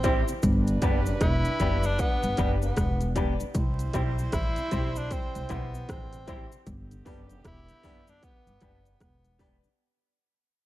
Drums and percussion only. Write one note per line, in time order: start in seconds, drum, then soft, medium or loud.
0.04 kick medium
0.04 closed hi-hat medium
0.04 cabasa medium
0.28 closed hi-hat soft
0.28 cabasa medium
0.42 kick loud
0.42 closed hi-hat medium
0.42 cabasa medium
0.67 closed hi-hat medium
0.67 cabasa medium
0.82 kick medium
0.82 closed hi-hat medium
0.82 cabasa medium
1.06 cabasa medium
1.21 kick loud
1.21 cross-stick loud
1.21 closed hi-hat loud
1.21 cabasa medium
1.45 closed hi-hat medium
1.45 cabasa soft
1.60 kick medium
1.60 closed hi-hat medium
1.60 cabasa medium
1.83 cabasa medium
1.99 kick loud
1.99 closed hi-hat medium
1.99 cabasa medium
2.23 closed hi-hat medium
2.23 cabasa soft
2.37 kick medium
2.37 closed hi-hat medium
2.37 cabasa soft
2.62 cabasa medium
2.77 kick loud
2.77 cross-stick loud
2.77 closed hi-hat medium
2.77 cabasa medium
3.01 closed hi-hat medium
3.01 cabasa soft
3.16 kick loud
3.16 closed hi-hat medium
3.16 cabasa medium
3.40 closed hi-hat soft
3.40 cabasa medium
3.55 kick loud
3.55 closed hi-hat loud
3.55 cabasa medium
3.79 closed hi-hat medium
3.79 cabasa medium
3.93 kick medium
3.93 closed hi-hat medium
3.93 cabasa medium
4.19 cabasa medium
4.32 kick loud
4.32 cross-stick loud
4.32 closed hi-hat loud
4.32 cabasa medium
4.56 closed hi-hat medium
4.56 cabasa soft
4.71 kick medium
4.71 closed hi-hat medium
4.71 cabasa medium
4.96 cabasa medium
5.11 kick medium
5.11 closed hi-hat medium
5.11 cabasa medium
5.35 closed hi-hat medium
5.35 cabasa medium
5.49 kick loud
5.49 closed hi-hat medium
5.49 cabasa soft
5.74 cabasa medium
5.89 kick loud
5.89 cross-stick loud
5.89 closed hi-hat medium
5.89 cabasa medium
6.13 closed hi-hat medium
6.13 cabasa soft
6.28 kick loud
6.28 closed hi-hat medium
6.28 cabasa soft
6.52 closed hi-hat soft
6.52 cabasa medium
6.67 kick loud
6.67 closed hi-hat loud
6.67 cabasa medium
6.91 closed hi-hat medium
6.91 cabasa medium
7.06 kick medium
7.06 open hi-hat medium
7.06 cabasa medium
7.29 closed hi-hat soft
7.29 cabasa medium
7.45 kick loud
7.45 cross-stick loud
7.45 closed hi-hat medium
7.45 cabasa medium
7.68 closed hi-hat medium
7.68 cabasa soft
7.83 kick medium
7.83 open hi-hat medium
7.83 cabasa soft
8.07 closed hi-hat soft
8.07 cabasa medium
8.23 kick loud
8.23 closed hi-hat medium
8.23 cabasa medium
8.47 closed hi-hat medium
8.47 cabasa soft
8.61 kick medium
8.61 closed hi-hat medium
8.61 cabasa soft
8.85 closed hi-hat soft
8.85 cabasa medium
9.00 kick loud
9.00 cross-stick loud
9.00 closed hi-hat medium
9.00 cabasa medium
9.25 closed hi-hat medium
9.25 cabasa soft
9.39 kick medium
9.39 open hi-hat medium
9.39 cabasa medium
9.64 cabasa medium